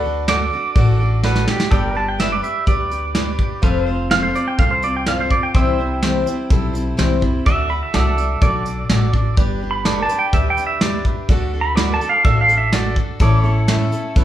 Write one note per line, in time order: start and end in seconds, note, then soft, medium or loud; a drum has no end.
0.00 0.48 D2 medium
0.00 0.25 F#4 loud
0.00 0.25 A4 medium
0.00 1.68 A4 medium
0.00 0.28 A4 medium
0.00 0.25 B4 loud
0.00 1.20 D5 medium
0.00 1.68 D5 medium
0.00 1.20 F#5 medium
0.05 0.28 D4 soft
0.05 0.29 F#4 medium
0.28 0.52 A3 medium
0.28 0.52 D4 medium
0.28 0.73 F#4 medium
0.28 0.52 F#4 medium
0.28 0.73 A4 medium
0.28 0.51 A4 medium
0.28 0.73 D5 medium
0.28 1.21 D5 loud
0.28 snare loud
0.28 open hi-hat soft
0.52 0.76 D4 soft
0.52 0.76 F#4 medium
0.52 0.76 A4 medium
0.76 1.44 A1 medium
0.76 1.00 D3 medium
0.76 1.00 A3 medium
0.76 1.00 D4 medium
0.76 1.21 F#4 medium
0.76 1.00 F#4 medium
0.76 1.21 A4 medium
0.76 0.98 A4 loud
0.76 1.21 D5 medium
0.76 kick loud
0.76 open hi-hat soft
1.00 1.24 D4 soft
1.00 1.24 F#4 medium
1.00 1.24 A4 medium
1.23 1.48 A3 medium
1.23 1.48 D4 medium
1.23 1.69 F#4 medium
1.23 1.48 F#4 medium
1.23 1.69 A4 medium
1.23 1.47 A4 medium
1.23 1.47 B4 medium
1.23 1.69 D5 medium
1.23 snare medium
1.35 snare medium
1.48 1.70 D4 soft
1.48 1.72 F#4 medium
1.48 1.71 G4 medium
1.48 1.72 A4 medium
1.48 snare medium
1.60 snare medium
1.71 2.40 G1 medium
1.71 1.95 G3 medium
1.71 1.95 D4 medium
1.71 2.17 G4 medium
1.71 1.95 G4 medium
1.71 1.96 A4 medium
1.71 2.17 B4 medium
1.71 1.94 B4 medium
1.71 2.17 D5 medium
1.71 3.62 D5 medium
1.71 1.95 G5 medium
1.71 kick loud
1.71 closed hi-hat medium
1.95 2.18 D4 soft
1.95 2.19 G4 soft
1.95 2.19 B4 medium
1.95 3.61 B4 medium
1.95 2.08 A5 medium
2.08 2.20 G5 medium
2.19 2.43 G3 medium
2.19 2.43 D4 medium
2.19 2.65 G4 medium
2.19 2.43 G4 medium
2.19 2.65 B4 medium
2.19 2.41 B4 medium
2.19 2.65 D5 medium
2.19 2.31 E5 medium
2.19 snare loud
2.19 closed hi-hat medium
2.32 2.43 D5 medium
2.42 2.66 D4 soft
2.42 2.66 G4 soft
2.42 2.67 B4 medium
2.42 2.67 E5 medium
2.42 closed hi-hat medium
2.66 3.35 D2 medium
2.66 2.91 G3 medium
2.66 2.91 D4 medium
2.66 3.12 G4 medium
2.66 2.91 G4 medium
2.66 3.12 B4 medium
2.66 2.89 B4 medium
2.66 3.13 D5 medium
2.66 3.60 D5 medium
2.66 kick medium
2.66 closed hi-hat medium
2.90 3.15 D4 soft
2.90 3.15 G4 soft
2.90 3.15 B4 soft
2.90 closed hi-hat medium
3.15 3.39 G3 medium
3.15 3.39 D4 medium
3.15 3.60 G4 medium
3.15 3.39 G4 medium
3.15 3.60 B4 medium
3.15 3.37 B4 medium
3.15 3.60 D5 medium
3.15 snare loud
3.15 closed hi-hat medium
3.38 3.63 D4 soft
3.38 3.64 G4 medium
3.38 3.63 B4 medium
3.38 kick medium
3.62 4.31 F1 medium
3.62 3.87 F3 medium
3.62 3.87 A3 medium
3.62 3.87 C4 medium
3.62 4.08 F4 medium
3.62 3.87 F4 medium
3.62 4.08 A4 medium
3.62 3.83 B4 medium
3.62 4.08 C5 loud
3.62 3.85 C5 medium
3.62 5.53 F5 medium
3.62 kick loud
3.62 closed hi-hat medium
3.83 5.53 C5 medium
3.83 4.11 C5 medium
3.88 4.10 C4 medium
3.88 4.11 F4 medium
4.11 4.35 F3 medium
4.11 4.35 A3 medium
4.11 4.35 C4 medium
4.11 4.56 F4 medium
4.11 4.35 F4 medium
4.11 4.56 A4 medium
4.11 4.56 C5 medium
4.11 4.34 C5 medium
4.11 4.23 F5 medium
4.11 snare loud
4.11 closed hi-hat medium
4.23 4.34 C5 medium
4.35 4.58 C4 soft
4.35 4.60 F4 soft
4.35 4.59 C5 medium
4.35 4.47 D5 medium
4.35 closed hi-hat medium
4.48 4.59 G5 medium
4.59 5.27 C2 medium
4.59 4.83 A3 medium
4.59 4.83 C4 medium
4.59 5.04 F4 medium
4.59 4.82 F4 medium
4.59 5.04 A4 medium
4.59 5.04 C5 medium
4.59 4.81 C5 medium
4.59 4.71 F5 medium
4.59 kick loud
4.59 closed hi-hat medium
4.71 4.83 C5 medium
4.82 5.06 C4 soft
4.82 5.07 F4 soft
4.82 5.06 C5 soft
4.82 4.95 D5 medium
4.82 closed hi-hat medium
4.97 5.07 G5 medium
5.06 5.31 F3 medium
5.06 5.31 A3 medium
5.06 5.31 C4 medium
5.06 5.52 F4 medium
5.06 5.31 F4 medium
5.06 5.52 A4 medium
5.06 5.29 C5 medium
5.06 5.52 D5 medium
5.06 5.19 F5 medium
5.06 snare loud
5.06 closed hi-hat medium
5.20 5.31 C5 medium
5.30 5.55 C4 soft
5.30 5.55 F4 soft
5.30 5.55 C5 medium
5.30 5.43 D5 medium
5.30 kick medium
5.43 5.54 G5 medium
5.54 6.23 C2 medium
5.54 5.78 C3 medium
5.54 5.79 E3 medium
5.54 5.79 G3 medium
5.54 5.79 C4 medium
5.54 6.00 E4 medium
5.54 5.78 E4 medium
5.54 6.00 G4 medium
5.54 6.00 C5 medium
5.54 7.44 C5 medium
5.54 5.77 C5 medium
5.54 7.45 E5 medium
5.54 6.48 G5 medium
5.54 kick loud
5.54 closed hi-hat medium
5.78 6.02 G3 soft
5.78 6.02 C4 soft
5.78 6.03 E4 soft
5.78 6.02 C5 medium
6.02 6.26 C3 medium
6.02 6.27 E3 medium
6.02 6.27 G3 medium
6.02 6.27 C4 medium
6.02 6.48 E4 medium
6.02 6.26 E4 medium
6.02 6.48 G4 medium
6.02 6.48 C5 medium
6.02 6.25 C5 medium
6.02 snare loud
6.02 closed hi-hat medium
6.26 6.49 G3 soft
6.26 6.50 C4 medium
6.26 6.51 E4 medium
6.26 6.50 C5 medium
6.26 closed hi-hat medium
6.50 6.91 B1 medium
6.50 6.74 G3 medium
6.50 6.74 C4 medium
6.50 6.95 E4 medium
6.50 6.73 E4 medium
6.50 6.95 G4 medium
6.50 6.96 A4 medium
6.50 6.72 C5 medium
6.50 kick loud
6.50 closed hi-hat medium
6.73 6.96 G3 soft
6.73 6.97 C4 soft
6.73 6.97 E4 medium
6.73 6.98 C5 medium
6.73 closed hi-hat medium
6.97 7.39 C2 medium
6.97 7.22 C3 medium
6.97 7.22 E3 medium
6.97 7.22 G3 medium
6.97 7.22 C4 medium
6.97 7.21 E4 medium
6.97 7.44 E4 medium
6.97 7.43 G4 medium
6.97 7.44 C5 medium
6.97 7.20 C5 loud
6.97 snare loud
6.97 closed hi-hat medium
7.21 7.46 G3 soft
7.21 7.46 C4 soft
7.21 7.46 E4 medium
7.21 7.46 C5 medium
7.21 kick medium
7.46 7.80 D2 medium
7.46 7.70 D3 medium
7.46 7.70 A3 medium
7.46 7.70 D4 medium
7.46 7.91 F#4 medium
7.46 7.69 F#4 medium
7.46 7.91 A4 medium
7.46 7.91 D5 medium
7.46 7.68 D5 medium
7.46 7.70 E5 loud
7.46 kick loud
7.46 closed hi-hat medium
7.69 7.93 D4 soft
7.69 7.93 F#4 medium
7.69 7.94 D5 medium
7.69 7.82 B5 medium
7.83 8.41 E5 medium
7.93 8.35 C2 medium
7.93 8.18 D3 medium
7.93 8.18 A3 medium
7.93 8.18 D4 medium
7.93 8.39 F#4 medium
7.93 8.18 F#4 medium
7.93 8.39 A4 medium
7.93 9.36 A4 medium
7.93 8.39 D5 medium
7.93 8.16 D5 medium
7.93 9.37 D5 medium
7.93 snare loud
7.93 closed hi-hat medium
8.17 8.41 D4 soft
8.17 8.42 F#4 soft
8.17 8.42 D5 medium
8.17 closed hi-hat medium
8.41 8.83 B1 medium
8.41 8.65 A3 medium
8.41 8.66 D4 medium
8.41 8.87 F#4 medium
8.41 8.65 F#4 medium
8.41 8.87 A4 medium
8.41 8.87 D5 medium
8.41 9.35 D5 loud
8.41 8.64 D5 medium
8.41 kick loud
8.41 closed hi-hat medium
8.65 8.89 D4 soft
8.65 8.90 F#4 soft
8.65 8.89 D5 soft
8.65 closed hi-hat medium
8.89 9.30 A1 medium
8.89 9.14 D3 medium
8.89 9.14 A3 medium
8.89 9.14 D4 medium
8.89 9.35 F#4 medium
8.89 9.13 F#4 medium
8.89 9.35 A4 medium
8.89 9.35 D5 medium
8.89 9.11 D5 medium
8.89 snare loud
8.89 closed hi-hat medium
9.13 9.36 D4 soft
9.13 9.38 F#4 medium
9.13 9.37 D5 medium
9.13 kick medium
9.37 10.06 G1 medium
9.37 9.61 G3 medium
9.37 9.61 D4 medium
9.37 9.83 G4 medium
9.37 9.61 G4 medium
9.37 9.83 B4 medium
9.37 9.60 B4 loud
9.37 9.83 D5 medium
9.37 kick loud
9.37 closed hi-hat medium
9.61 9.85 D4 soft
9.61 9.86 G4 soft
9.61 9.85 B4 medium
9.71 10.01 B5 medium
9.85 10.09 G3 medium
9.85 10.10 D4 medium
9.85 10.30 G4 medium
9.85 10.10 G4 medium
9.85 10.10 A4 medium
9.85 10.30 B4 medium
9.85 10.08 B4 medium
9.85 10.30 D5 medium
9.85 11.28 D5 medium
9.85 snare loud
9.85 closed hi-hat medium
10.03 10.18 A5 medium
10.09 10.33 D4 soft
10.09 10.34 G4 soft
10.09 10.33 B4 medium
10.09 11.27 B4 medium
10.09 closed hi-hat medium
10.19 10.34 G5 medium
10.33 11.01 D2 medium
10.33 10.57 G3 medium
10.33 10.58 D4 medium
10.33 10.78 G4 medium
10.33 10.57 G4 medium
10.33 10.79 B4 medium
10.33 10.55 B4 medium
10.33 10.78 D5 medium
10.33 10.49 E5 medium
10.33 kick loud
10.33 closed hi-hat medium
10.50 10.65 G5 medium
10.57 10.80 D4 soft
10.57 10.81 G4 soft
10.57 10.81 B4 medium
10.57 closed hi-hat medium
10.67 10.81 E5 medium
10.81 11.05 G3 medium
10.81 11.05 D4 medium
10.81 11.27 G4 medium
10.81 11.05 G4 medium
10.81 11.27 B4 medium
10.81 11.04 B4 medium
10.81 11.05 D5 loud
10.81 11.27 E5 medium
10.81 snare loud
10.81 closed hi-hat medium
11.05 11.29 D4 soft
11.05 11.30 G4 soft
11.05 11.29 B4 medium
11.05 kick medium
11.29 11.97 D2 medium
11.29 11.53 D3 medium
11.29 11.53 A3 medium
11.29 11.54 D4 medium
11.29 11.74 F#4 medium
11.29 11.54 F#4 medium
11.29 11.74 A4 medium
11.29 11.52 A4 loud
11.29 11.74 D5 medium
11.29 kick loud
11.29 closed hi-hat medium
11.53 11.77 D4 soft
11.53 11.77 F#4 soft
11.53 11.77 A4 medium
11.61 11.92 B5 medium
11.76 12.01 D3 medium
11.76 12.01 A3 medium
11.76 12.01 D4 medium
11.76 12.22 F#4 medium
11.76 12.01 F#4 medium
11.76 12.22 A4 medium
11.76 12.00 A4 medium
11.76 12.01 B4 medium
11.76 13.19 D5 medium
11.76 12.22 D5 medium
11.76 snare loud
11.76 closed hi-hat medium
11.94 12.09 A5 medium
12.01 12.25 D4 soft
12.01 12.26 F#4 soft
12.01 13.18 A4 medium
12.01 12.25 A4 medium
12.01 closed hi-hat medium
12.09 12.24 F5 medium
12.25 12.93 A1 medium
12.25 12.49 A3 medium
12.25 12.49 D4 medium
12.25 12.70 F#4 medium
12.25 12.49 F#4 medium
12.25 12.70 A4 medium
12.25 12.47 A4 medium
12.25 12.70 D5 medium
12.25 12.40 E5 medium
12.25 kick loud
12.25 closed hi-hat medium
12.41 12.56 F5 medium
12.48 12.72 D4 soft
12.48 12.73 F#4 soft
12.48 12.72 A4 medium
12.48 closed hi-hat medium
12.58 12.73 E5 medium
12.73 12.96 D3 medium
12.73 12.97 A3 medium
12.73 12.97 D4 medium
12.73 13.18 F#4 medium
12.73 12.96 F#4 medium
12.73 13.18 A4 medium
12.73 12.95 A4 medium
12.73 13.18 D5 medium
12.73 12.96 D5 loud
12.73 snare loud
12.73 closed hi-hat medium
12.96 13.20 D4 soft
12.96 13.21 F#4 soft
12.96 13.20 A4 medium
12.96 kick medium
13.20 13.88 A1 medium
13.20 13.44 A2 loud
13.20 13.44 E3 medium
13.20 13.44 A3 medium
13.20 13.44 C#4 medium
13.20 13.66 E4 medium
13.20 13.43 E4 loud
13.20 13.66 A4 medium
13.20 14.24 A4 medium
13.20 13.42 A4 loud
13.20 13.66 C#5 loud
13.20 13.42 D5 medium
13.20 kick loud
13.20 closed hi-hat medium
13.42 13.67 A3 soft
13.42 13.67 C#4 medium
13.42 13.68 E4 medium
13.42 13.68 A4 medium
13.42 14.24 C#5 medium
13.68 13.92 A2 medium
13.68 13.92 E3 medium
13.68 13.92 A3 medium
13.68 13.92 C#4 medium
13.68 13.91 E4 medium
13.68 14.14 E4 medium
13.68 14.14 A4 medium
13.68 13.90 A4 medium
13.68 14.14 E5 medium
13.68 snare loud
13.68 closed hi-hat medium
13.91 14.14 A3 soft
13.91 14.15 C#4 medium
13.91 14.16 E4 medium
13.91 14.16 A4 medium
13.91 closed hi-hat medium
14.15 14.24 E1 medium
14.15 14.24 A3 medium
14.15 14.24 C#4 medium
14.15 14.24 E4 medium
14.15 14.24 A4 medium
14.15 14.24 B4 loud
14.15 kick loud
14.15 closed hi-hat medium